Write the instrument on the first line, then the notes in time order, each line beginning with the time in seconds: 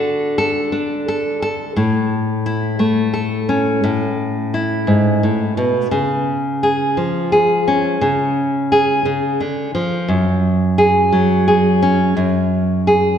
nylon-string guitar
Already playing: D3 F#4 A4
0.38 A4
0.72 D4
1.08 A4
1.42 A4
1.76 A2
2.46 E4
2.79 A3
3.14 A4
3.49 C#4
3.84 A2
4.54 E4
4.87 G#2
5.23 A2
5.57 B2
5.91 C#3
6.63 G#4
6.97 F3
7.32 G#4
7.68 C#4
8.01 C#3
8.72 G#4
9.05 C#3
9.40 D3
9.75 F3
10.08 F#2
10.78 G#4
11.12 F#3
11.48 G#4
11.82 C#4
12.17 F#2
12.87 G#4